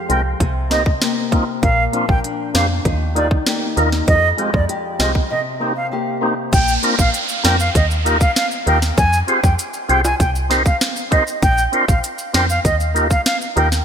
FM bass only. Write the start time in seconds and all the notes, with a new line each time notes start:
0.10 C2
0.40 C2
1.63 A#1
2.09 A#1
2.55 F2
2.85 D#2
3.77 D#2
4.08 F2
4.54 F2
5.00 C2
6.53 A#1
6.99 A#1
7.45 F2
7.75 D#2
8.67 D#2
8.98 F2
9.44 F2
9.89 C2
10.20 C2
11.43 A#1
11.88 A#1
12.34 F2
12.65 D#2
13.57 D#2